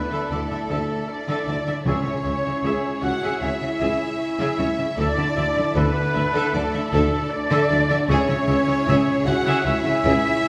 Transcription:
Already playing: french horn section B3, string section E4 A4 D5 E5, violin section B4, trumpet section B4, flute B4
0.11 cello section D3, viola section A4 E5, violin section A4
0.30 double bass section D2, tuba D2, cello section D3, french horn section A3, violin section A4 D5, flute A4, trumpet section A4, viola section D5 E5
0.50 cello section D3, viola section E5, violin section E5
0.69 double bass section D2, tuba D2, cello section D3, viola section A4 E5, violin section A4
1.07 french horn section D4, flute D5, violin section D5, trumpet section D5
1.28 cello section D3, viola section A4 E5, violin section A4
1.47 double bass section D2, tuba D2, cello section D3, viola section D5 E5, violin section D5
1.67 cello section D3, viola section E5, violin section E5
1.85 double bass section C#2, tuba C#2, timpani C#3, cello section C#3, french horn section C#4, string section E4 G#4 C#5 E5, viola section G#4 E5, violin section G#4 C#5, flute C#5, trumpet section C#5
2.05 cello section C#3, violin section C#5, viola section C#5 E5
2.24 tuba C#2, double bass section C#2, cello section C#3, violin section E5, viola section E5
2.44 cello section C#3, violin section C#5, viola section C#5 E5
2.63 double bass section C#2, tuba C#2, cello section C#3, violin section G#4, viola section G#4 E5
3.02 tuba C#2, double bass section C#2, cello section C#3, french horn section F#4, violin section E5 F#5, viola section E5, trumpet section F#5, flute F#5
3.22 cello section C#3, viola section G#4 E5, violin section G#4
3.41 tuba C#2, double bass section C#2, cello section C#3, french horn section E4, violin section C#5 E5, viola section C#5 E5, flute E5, trumpet section E5
3.61 cello section C#3, viola section E5, violin section E5
3.80 tuba C#2, double bass section C#2, cello section C#3, viola section G#4 E5, violin section G#4
4.39 cello section C#3, viola section G#4 E5, violin section G#4
4.58 tuba C#2, double bass section C#2, cello section C#3, viola section C#5 E5, violin section C#5
4.78 cello section C#3, viola section E5, violin section E5
4.97 tuba D2, double bass section D2, cello section D3, french horn section D4, violin section A4 D5, string section A4 D5, viola section A4 E5, flute D5, trumpet section D5
5.17 cello section D3, violin section D5, viola section D5 E5
5.36 tuba D2, double bass section D2, cello section D3, violin section E5, viola section E5
5.54 cello section D3, violin section D5, viola section D5 E5
5.74 tuba D2, double bass section D2, cello section D3, french horn section B3, violin section A4 B4, viola section A4 E5, flute B4, trumpet section B4
6.14 tuba D2, double bass section D2, cello section D3, violin section E5, viola section E5
6.34 cello section D3, violin section A4, viola section A4 E5
6.53 tuba D2, double bass section D2, cello section D3, french horn section A3, trumpet section A4, violin section A4 D5, flute A4, viola section D5 E5
6.73 cello section D3, viola section E5, violin section E5
6.92 tuba D2, double bass section D2, cello section D3, viola section A4 E5, violin section A4
7.30 french horn section D4, flute D5, violin section D5, trumpet section D5
7.51 cello section D3, viola section A4 E5, violin section A4
7.70 tuba D2, double bass section D2, cello section D3, violin section D5, viola section D5 E5
7.88 cello section D3, viola section E5, violin section E5
8.08 double bass section C#2, tuba C#2, cello section C#3, french horn section C#4, string section E4 G#4 C#5 E5, viola section G#4 E5, violin section G#4 C#5, flute C#5, trumpet section C#5
8.29 cello section C#3, viola section C#5 E5, violin section C#5
8.47 double bass section C#2, tuba C#2, cello section C#3, viola section E5, violin section E5
8.67 cello section C#3, viola section C#5 E5, violin section C#5
8.87 double bass section C#2, tuba C#2, cello section C#3, viola section G#4 E5, violin section G#4
9.24 double bass section C#2, tuba C#2, cello section C#3, french horn section F#4, viola section E5, violin section E5 F#5, flute F#5, trumpet section F#5
9.45 cello section C#3, viola section G#4 E5, violin section G#4
9.64 double bass section C#2, tuba C#2, cello section C#3, french horn section E4, viola section C#5 E5, violin section C#5 E5, flute E5, trumpet section E5
9.85 cello section C#3, viola section E5, violin section E5
10.04 double bass section C#2, tuba C#2, cello section C#3, viola section G#4 E5, violin section G#4

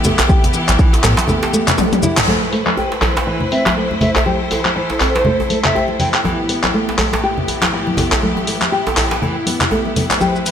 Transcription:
Already playing: string section E3 B3 E4 G4
0.04 nylon-string guitar A3, djembe tone, low conga, maracas
0.19 clap, closed hi-hat, djembe bass, maracas
0.29 nylon-string guitar G4, kick, muted conga, high conga, maracas
0.44 closed hi-hat, djembe tone, low conga, maracas
0.54 nylon-string guitar E3, maracas
0.68 sub bass A1, clap, closed hi-hat, high conga, maracas
0.79 nylon-string guitar E3, kick, maracas
0.93 closed hi-hat, djembe slap, djembe tone, maracas
1.04 sub bass A2, nylon-string guitar B3, clap, high conga, djembe bass, maracas
1.17 closed hi-hat, djembe slap, muted conga, maracas
1.28 nylon-string guitar A3, djembe tone, low conga, maracas
1.43 djembe slap, maracas
1.53 nylon-string guitar A3, muted conga, high conga, maracas
1.68 clap, closed hi-hat, low conga, maracas
1.78 nylon-string guitar A3, high tom, djembe tone, maracas
1.92 closed hi-hat, high tom, muted conga, maracas
2.03 nylon-string guitar E4, high conga, low conga, maracas
2.17 clap, closed hi-hat, mid tom, djembe tone, maracas
2.27 string section A3 E4 B4 C5, nylon-string guitar A3, muted conga, djembe tone, high conga
2.53 nylon-string guitar A3, open hi-hat
2.66 clap, high conga
2.77 nylon-string guitar G4, muted conga, djembe tone
2.92 djembe slap
3.02 nylon-string guitar E3, clap, open hi-hat, high conga, djembe bass
3.16 muted conga, djembe slap, djembe tone
3.27 nylon-string guitar E3
3.40 low conga
3.51 nylon-string guitar C4, flute E5, open hi-hat, muted conga
3.66 clap, djembe slap, high conga, djembe tone
3.76 nylon-string guitar A3
3.91 muted conga, high conga
4.01 nylon-string guitar A3, flute E5, open hi-hat, djembe tone, low conga
4.16 flute E5, clap, djembe bass
4.26 nylon-string guitar G4, string section A4, muted conga, high conga
4.51 nylon-string guitar E3, open hi-hat, djembe tone
4.65 clap, high conga
4.76 nylon-string guitar E3, muted conga
4.90 djembe slap, djembe tone
5.00 nylon-string guitar C4, clap, open hi-hat, djembe bass
5.15 flute C5, muted conga, djembe slap
5.25 nylon-string guitar A3, low conga
5.40 djembe tone
5.50 nylon-string guitar A3, open hi-hat, muted conga, high conga
5.64 flute E5, clap, low conga
5.75 nylon-string guitar G4, djembe tone
5.88 muted conga
6.00 nylon-string guitar E3, flute G5, open hi-hat, high conga, low conga
6.14 flute G5, clap, open hi-hat
6.24 string section A2 E3 B3 E4 G4, nylon-string guitar E3, muted conga, djembe tone, high conga
6.49 nylon-string guitar B3, open hi-hat
6.64 clap, djembe tone, high conga
6.74 nylon-string guitar A3, muted conga
6.89 djembe slap
6.98 nylon-string guitar A3, clap, open hi-hat, high conga, djembe bass
7.13 muted conga, djembe slap, djembe tone
7.23 nylon-string guitar G4
7.38 low conga
7.48 nylon-string guitar E3, open hi-hat, muted conga, djembe tone
7.62 clap, djembe slap, high conga
7.73 nylon-string guitar E3
7.87 muted conga, high conga
7.97 nylon-string guitar B3, open hi-hat, djembe tone, low conga
8.12 clap, djembe bass
8.22 nylon-string guitar A3, muted conga, high conga
8.37 djembe tone
8.47 nylon-string guitar A3, open hi-hat
8.62 clap, high conga
8.72 nylon-string guitar G4, muted conga
8.87 djembe slap, djembe tone
8.97 nylon-string guitar E3, clap, open hi-hat, djembe bass
9.11 djembe slap, muted conga
9.22 nylon-string guitar E3, djembe tone, low conga
9.46 nylon-string guitar B3, open hi-hat, muted conga, high conga
9.61 clap, low conga
9.71 nylon-string guitar A3, djembe tone
9.85 muted conga
9.96 nylon-string guitar A3, open hi-hat, high conga, low conga
10.10 clap, open hi-hat, djembe tone
10.20 string section A3 B4 C5, nylon-string guitar G4, muted conga, djembe tone, high conga, maracas
10.36 maracas
10.46 nylon-string guitar E3, open hi-hat, maracas

